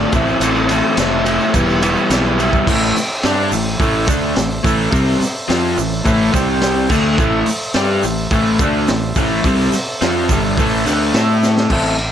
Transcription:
Already playing: overdriven electric guitar D3 A3 D4 F4, transistor combo organ D5 F5
0.11 fingered electric bass A1, overdriven electric guitar A2 E3 A3 C4, transistor combo organ A4 C5, kick, ride, shaker
0.15 overdriven electric guitar E4, transistor combo organ E5
0.28 shaker
0.40 fingered electric bass A1, overdriven electric guitar A2 E3 A3 C4, ride, shaker
0.45 overdriven electric guitar E4
0.56 shaker
0.69 overdriven electric guitar A2 E3 A3 C4 E4, ride, shaker
0.97 fingered electric bass F1, overdriven electric guitar A2 E3 A3 C4 E4, snare, ride, shaker
1.25 overdriven electric guitar A2 E3 A3 C4 E4, ride, shaker
1.40 shaker
1.53 fingered electric bass E1, overdriven electric guitar E3 G3 B3 E4, transistor combo organ G4 B4 E5, kick, ride, shaker
1.69 shaker
1.82 overdriven electric guitar E3 G3 B3 E4, ride, shaker
1.97 shaker
2.10 fingered electric bass B1, overdriven electric guitar E3 G3 B3 E4, snare, ride, shaker
2.25 shaker
2.39 overdriven electric guitar E3 G3 B3 E4, ride, shaker
2.53 kick, shaker
2.67 fingered electric bass A1, overdriven electric guitar A2 E3 A3, transistor combo organ A4 C5 E5, kick, crash, shaker
2.96 muted fingered electric bass stroke, muted overdriven electric guitar stroke, snare, open hi-hat, shaker
3.23 fingered electric bass G2, overdriven electric guitar G3 D4 G4, snare, open hi-hat, shaker
3.52 fingered electric bass A1, overdriven electric guitar A2 E3, open hi-hat, shaker
3.79 fingered electric bass A1, overdriven electric guitar A2 E3 A3, kick, open hi-hat, shaker
4.07 fingered electric bass D2, overdriven electric guitar D3 A3 D4, kick, open hi-hat, shaker
4.35 fingered electric bass A1, overdriven electric guitar A2 E3, snare, open hi-hat, shaker
4.63 fingered electric bass A1, overdriven electric guitar A2 E3 A3, kick, open hi-hat, shaker
4.91 fingered electric bass C2, overdriven electric guitar C3 G3 C4, kick, open hi-hat, shaker
5.20 muted overdriven electric guitar stroke, muted fingered electric bass stroke, snare, open hi-hat, shaker
5.36 shaker
5.48 fingered electric bass F2, overdriven electric guitar F3 C4 F4, snare, open hi-hat, shaker
5.77 fingered electric bass A1, overdriven electric guitar A2 E3, open hi-hat, shaker
5.92 shaker
6.05 fingered electric bass A1, overdriven electric guitar A2 E3 A3, kick, open hi-hat, shaker
6.32 fingered electric bass C2, overdriven electric guitar C3 G3 C4, transistor combo organ G4 C5 G5, kick, snare, open hi-hat, shaker
6.61 snare, open hi-hat, shaker
6.88 fingered electric bass D2, overdriven electric guitar D3 A3 D4, transistor combo organ A4 C5, kick, crash, shaker
6.93 transistor combo organ E5
7.18 fingered electric bass A1, overdriven electric guitar A2 E3 A3, kick, shaker
7.46 muted overdriven electric guitar stroke, muted fingered electric bass stroke, open hi-hat, shaker
7.63 shaker
7.73 fingered electric bass G2, overdriven electric guitar G3 D4 G4, snare, open hi-hat, shaker
8.02 fingered electric bass A1, overdriven electric guitar A2 E3, open hi-hat, shaker
8.18 shaker
8.30 fingered electric bass A1, overdriven electric guitar A2 E3 A3, kick, open hi-hat, shaker
8.59 fingered electric bass D2, overdriven electric guitar D3 A3, kick, open hi-hat, shaker
8.63 overdriven electric guitar D4
8.87 fingered electric bass A1, overdriven electric guitar A2 E3, snare, open hi-hat, shaker
9.15 fingered electric bass A1, overdriven electric guitar A2 E3 A3, kick, open hi-hat, shaker
9.44 fingered electric bass C2, overdriven electric guitar C3 G3 C4, kick, open hi-hat, shaker
9.72 muted fingered electric bass stroke, muted overdriven electric guitar stroke, snare, open hi-hat, shaker
9.88 shaker
10.01 fingered electric bass F2, overdriven electric guitar F3 C4 F4, snare, open hi-hat, shaker
10.29 fingered electric bass G1, overdriven electric guitar G2 D3 G3, kick, open hi-hat, shaker
10.44 shaker
10.57 fingered electric bass A1, overdriven electric guitar A2 E3 A3, kick, open hi-hat, shaker
10.85 fingered electric bass D2, overdriven electric guitar D3 A3 D4, snare, open hi-hat, shaker
11.02 shaker
11.14 fingered electric bass A2, overdriven electric guitar A3 E4 A4, snare, open hi-hat, shaker
11.43 snare, shaker
11.57 snare, shaker
11.69 fingered electric bass A1, overdriven electric guitar A2 E3 A3 C4, transistor combo organ A4 C5 E5, kick, crash
11.73 overdriven electric guitar E4 A4
11.98 ride

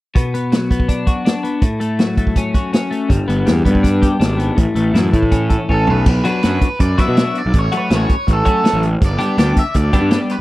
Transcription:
0.15 clean electric guitar B2, kick, closed hi-hat
0.34 clean electric guitar B3, closed hi-hat
0.52 clean electric guitar F#3, snare, closed hi-hat
0.71 clean electric guitar B3, kick, closed hi-hat
0.80 kick
0.88 clean electric guitar D4, kick, closed hi-hat
1.07 clean electric guitar F#4, kick, closed hi-hat
1.25 clean electric guitar D4, snare, closed hi-hat
1.43 clean electric guitar B3, closed hi-hat
1.62 clean electric guitar A2, kick, closed hi-hat
1.80 clean electric guitar A3, closed hi-hat
1.99 clean electric guitar F#3, snare, closed hi-hat
2.17 clean electric guitar A3, kick, closed hi-hat
2.27 kick
2.36 clean electric guitar C#4, kick, closed hi-hat
2.54 clean electric guitar F#4, kick, closed hi-hat
2.73 clean electric guitar C#4, snare, closed hi-hat
2.91 clean electric guitar A3, closed hi-hat
3.09 picked electric bass G1, clean electric guitar G2, kick, closed hi-hat
3.28 picked electric bass G1, clean electric guitar B3, closed hi-hat
3.46 picked electric bass E2, clean electric guitar G3, snare, closed hi-hat
3.65 picked electric bass G2, clean electric guitar B3, kick, closed hi-hat
3.75 kick
3.83 clean electric guitar D4, kick, closed hi-hat
4.02 clean electric guitar G4, kick, closed hi-hat
4.20 picked electric bass G#1, clean electric guitar D4, snare, closed hi-hat
4.38 clean electric guitar B3, closed hi-hat
4.56 picked electric bass A1, clean electric guitar A2, kick, closed hi-hat
4.75 picked electric bass A1, clean electric guitar A3, closed hi-hat
4.94 picked electric bass F#2, clean electric guitar E3, snare, closed hi-hat
5.13 picked electric bass A2, clean electric guitar A3, kick, closed hi-hat
5.23 kick
5.31 clean electric guitar C#4, kick, closed hi-hat
5.50 clean electric guitar A4, kick, closed hi-hat
5.69 picked electric bass A1, clean electric guitar C#4, overdriven electric guitar A4, kick
5.87 picked electric bass B1, clean electric guitar A3, overdriven electric guitar B4, floor tom
6.06 picked electric bass B1, kick, crash
6.24 clean electric guitar F#3 B3 D4 F#4, overdriven electric guitar B4, closed hi-hat
6.43 picked electric bass F#2, clean electric guitar F#3 B3 D4 F#4, snare, closed hi-hat
6.61 kick, closed hi-hat
6.80 picked electric bass F#2, overdriven electric guitar D5, kick, closed hi-hat
6.98 clean electric guitar F#3 B3 D4 F#4, overdriven electric guitar E5, kick, snare, closed hi-hat
7.08 picked electric bass B2
7.17 clean electric guitar F#3 B3 D4 F#4, snare, closed hi-hat
7.35 overdriven electric guitar D5, closed hi-hat
7.46 picked electric bass B1
7.53 picked electric bass A1, kick, closed hi-hat
7.59 overdriven electric guitar C#5
7.72 clean electric guitar F#3 A3 C#4 F#4, closed hi-hat
7.77 overdriven electric guitar B4
7.90 picked electric bass A1, clean electric guitar F#3 A3 C#4 F#4, snare, closed hi-hat
7.96 overdriven electric guitar C#5
8.09 kick, closed hi-hat
8.28 picked electric bass A1, kick, closed hi-hat
8.33 overdriven electric guitar A4
8.45 clean electric guitar F#3 A3 C#4 F#4, kick, closed hi-hat
8.64 clean electric guitar F#3 A3 C#4 F#4, snare, closed hi-hat
8.73 picked electric bass A1
8.83 closed hi-hat
9.02 picked electric bass G1, kick, closed hi-hat
9.06 overdriven electric guitar D5
9.19 clean electric guitar G3 B3 D4 G4, closed hi-hat
9.37 picked electric bass D2, clean electric guitar G3 B3 D4 G4, overdriven electric guitar D5, snare, closed hi-hat
9.57 overdriven electric guitar E5, kick, closed hi-hat
9.74 picked electric bass D2, overdriven electric guitar D5, kick, closed hi-hat
9.93 clean electric guitar G3 B3 D4 G4, kick, closed hi-hat
10.01 picked electric bass G2
10.10 clean electric guitar G3 B3 D4 G4, snare, closed hi-hat
10.29 overdriven electric guitar B4, closed hi-hat

